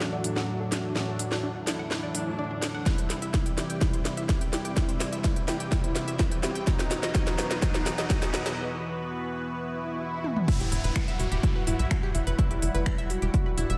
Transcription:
Already playing: A2 E3 F#3 D4 F#4 A4 E5
0.00 D4, snare
0.13 D5
0.24 A2 F#3 D4, open hi-hat
0.36 F#5, snare
0.48 D4
0.60 A4
0.72 D4 F#4, snare, open hi-hat
0.84 D5
0.96 A2 F#3 D4, snare
1.08 A4
1.19 D4, open hi-hat
1.32 D5, snare
1.43 D4
1.56 F#5
1.67 D4 E4, snare, open hi-hat
1.79 F#5
1.91 D4, snare
2.03 D5
2.15 A2 F#3 D4, open hi-hat
2.27 A2 F#3 D4
2.39 D4 D5
2.51 D4
2.62 D4, snare, open hi-hat
2.75 F#5
2.86 C3 G3 C4 E4 G4 D5, kick, snare, closed hi-hat, riser
2.98 C5, closed hi-hat
3.10 E4, snare, open hi-hat
3.22 E5, closed hi-hat
3.34 E4, kick, snare, closed hi-hat
3.46 G5, closed hi-hat
3.58 E4 G4, snare, open hi-hat
3.70 G5, closed hi-hat
3.81 C3 G3 E4, kick, snare, closed hi-hat
3.93 C5, closed hi-hat
4.05 E4, snare, open hi-hat
4.17 E5, closed hi-hat
4.29 E4, kick, snare, closed hi-hat
4.41 G5, closed hi-hat
4.53 E4 G4, snare, open hi-hat
4.65 G5, closed hi-hat
4.77 C3 G3 E4 F#4, kick, snare, closed hi-hat
4.89 C5, closed hi-hat
5.00 E4, snare, open hi-hat
5.13 E5, closed hi-hat
5.24 E4, kick, snare, closed hi-hat
5.36 G5, closed hi-hat
5.48 E4 G4, snare, open hi-hat
5.60 G5, closed hi-hat
5.72 C3 G3 E4, kick, snare, closed hi-hat
5.84 C5, closed hi-hat
5.95 E4, snare, open hi-hat
6.08 E5, closed hi-hat
6.19 E4, kick, snare, closed hi-hat
6.31 G5, closed hi-hat
6.43 E4 G4, snare, open hi-hat
6.55 G5, closed hi-hat
6.67 B2 E3 F#3 B3 D#4 B4, kick, snare, closed hi-hat
6.79 B4, snare, closed hi-hat
6.91 D#4, snare, open hi-hat
7.03 D#5, snare, closed hi-hat
7.15 B2 F#3 D#4, kick, snare, closed hi-hat
7.27 B4, snare, closed hi-hat
7.38 D#4, snare, open hi-hat
7.51 D#5, snare, closed hi-hat
7.62 B2 F#3 D#4, kick, snare, closed hi-hat
7.74 B4, snare, closed hi-hat
7.86 D#4, snare, open hi-hat
7.98 D#5, snare, closed hi-hat
8.10 B2 F#3 D#4, kick, snare, closed hi-hat
8.22 B4, snare, closed hi-hat
8.34 D#4, snare, open hi-hat
8.46 D#5, snare, closed hi-hat
9.53 swell
10.24 high tom
10.36 mid tom
10.48 G2 F#3 E4 E5 F#5, kick, closed hi-hat, downlifter
10.60 E1 G4 G5, closed hi-hat
10.72 E1 E4 E5, open hi-hat
10.84 E1 B4 B5, closed hi-hat
10.96 E4 E5, finger snap, kick, closed hi-hat
11.08 E5 E6, closed hi-hat
11.19 E1 E4 F#4 E5, open hi-hat
11.32 E1 G4 G5, closed hi-hat
11.43 E4 E5, kick, closed hi-hat
11.56 B4 B5
11.67 E1 G2 F#3 E4 E5, open hi-hat
11.79 B1 E5 E6, closed hi-hat
11.91 E4, finger snap, kick, closed hi-hat
12.03 G4 G5
12.15 F#1 E4 E5, open hi-hat
12.27 F#1 B4 B5, closed hi-hat
12.39 F#3 G3 E4 E5, kick, closed hi-hat
12.51 F#1 G4 G5, closed hi-hat
12.62 F#1 E4 E5, open hi-hat
12.74 F#1 B4 B5, closed hi-hat
12.86 E4 E5, finger snap, kick, closed hi-hat
12.98 E5 E6, closed hi-hat
13.10 E1 E4 F#4 E5, open hi-hat
13.22 E1 G4 G5, closed hi-hat
13.34 E4 E5, kick, closed hi-hat
13.46 B4 B5
13.58 E1 G2 G3 E4 E5, open hi-hat
13.70 E1 E5 E6, closed hi-hat

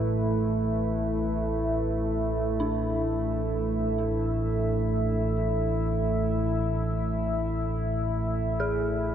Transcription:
Already playing: A1 A2 A3 E4 B4
1.19 E5
2.60 D4
8.56 G#4 G#5

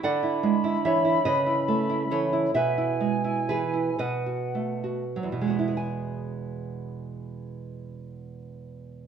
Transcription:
0.03 D3 D5 F#5 B5
0.23 E4
0.43 G#3
0.64 E4
0.85 E3 C#5 E5
1.05 E4
1.25 C#3 B4 D#5
1.46 E4
1.68 A3
1.90 E4
2.11 E3 A4 C#5
2.33 E4
2.54 B2 B4 E5 G#5
2.78 E4
3.00 G#3
3.24 E4
3.49 E3 G#4 B4
3.74 E4
3.99 B2 B4 D#5 F#5
4.26 F#4
4.55 A3
4.84 F#4
5.16 F#3
5.23 E2
5.32 B2
5.41 G#3
5.48 B3 F#4
5.59 E4
5.68 G#4
5.77 G#5

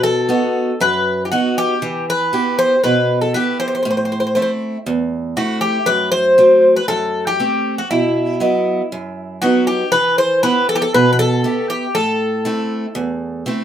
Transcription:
Already playing: B2
0.03 A4
0.29 B3 D#4 F#4
0.80 F#2 B4
1.25 G4
1.32 B3 D#4 F#4
1.58 G4
1.82 E3
2.10 B4
2.33 B3 E4 G4
2.59 C5
2.84 B2 B4
3.21 A4
3.34 B3 E4 G4 B4
3.60 C5
3.68 C5
3.75 C5
3.83 A2 C5
3.90 C5
3.97 C5
4.05 C5
4.12 C5
4.20 C5
4.27 C5
4.35 A3 C4 E4 C5
4.42 C5
4.86 E2
5.37 A3 C4 E4 F#4
5.61 G4
5.86 F#2 B4
6.12 C5
6.38 F#3 A3 C4
6.76 B4
6.88 F#2 A4
7.27 G4
7.40 A3 C4
7.78 F#4
7.91 B2 E4
8.40 F#3 B3 D#5
8.92 F#2
9.42 F#3 B3 D#4 F#4
9.67 G4
9.92 E3 B4
10.18 C5
10.43 B3 E4 G4 B4
10.69 A4
10.76 G4
10.82 A4
10.94 B2 B4
11.13 B4
11.19 A4
11.44 B3 E4 G4
11.70 G4
11.95 A2 A4
12.45 A3 C4 E4
12.95 E2
13.46 A3 C4 E4

